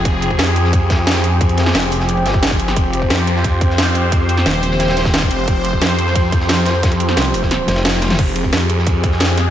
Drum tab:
CC |--------------------------------|--------------------------------|--------------------------------|--------------------------------|
RD |x---x-x-x---x---x---x---x-x-----|x---x-x-x---x---x-x-x---x---x-x-|x---x-x-x---x---x---x---x---x---|x---x---x---x---x-x-x-x-x-x-x-x-|
HH |x---x---x---x---x---x---x---x---|x-x-x---x---o---x---x---x---x---|x---x---x---x---x---x---x---x---|x---x---x---o---x---x---x---x---|
SD |--------o-----o-----o---o-o-----|----o-o-o-----o-----o---o-o---o-|--------o-----o-------o-o-o-----|------o-o-----o-o-o-o-o-o-------|
T1 |--------------------------------|--------------------------------|--------------------------------|--------------------------------|
T2 |--------------------------------|--------------------------------|--------------------------------|--------------------------------|
BD |o-----o---------o---o-----------|o---------------------o---o-----|o-----o---------o---o-----------|o---------------------o---o-----|

CC |--------------------------------|--------------------------------|x-------------------------------|
RD |x---x-x-x---x---x---x---x---x---|x---x---x---x-------x-x-x-x-xxxx|x---x-x-x---x---x---x---x---x---|
HH |x---x---x---x---x---x---x---x---|x-x-x---x---o---x---x---x---x-x-|x---x---x---x---x---x---x---x---|
SD |--------o-----o-------o-o-o-o---|o-----o-o-----o-o---o-o-o-o-oooo|--------o-----o-------o-o-o-o---|
T1 |--------------------------------|----------------------------o---|--------------------------------|
T2 |--------------------------------|------------------------------o-|--------------------------------|
BD |o-----o---------o---o-----------|o-------------o-----------------|o-----o---------o---o-----------|